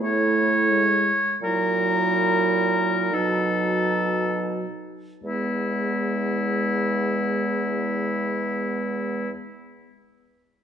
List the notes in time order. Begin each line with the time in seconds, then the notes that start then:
0.00 A2 A3 E4 C#5
0.71 G#3
1.42 A#2 F#3 E4 A#4
3.13 B2 F#3 D#4 A4
5.23 E2 G#3 B3 E4